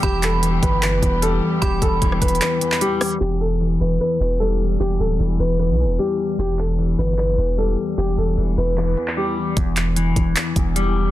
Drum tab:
HH |x-----x-----x-----x-----x-----x-----x-----------|x-----x-----x-----x-x-x-x-----x-----x-----o-----|x-----x-----x-----x-----x-----x-----x-----------|x-----x-----x-----x-----x-----x-----x-----------|
CP |------x-----------------x-----------------------|------------------------x--------x--------------|------------------------------------------------|------------------------------------------------|
SD |------------------------------------------------|---------------r--------------------------r-----|------------------------------------------------|------------------------------------------------|
BD |o-----------------o-----------o-----------------|o-----o-----o-----o-----------------------------|------------------------------------------------|------------------------------------------------|

HH |x-----x-----x-----x-----x-----x-----x-----------|x-----x-----x-----x-x-x-------x-----------------|x-----x-----x-----x-----x-----x-----x-----------|
CP |------x-----------------x-----------------------|------------------------x--------x--------------|------x-----------------x-----------------------|
SD |------------------------------------------------|------------------------------------------------|------------------------------------------------|
BD |------------------------------------------------|------------------------------------------------|o-----------------o-----------o-----------------|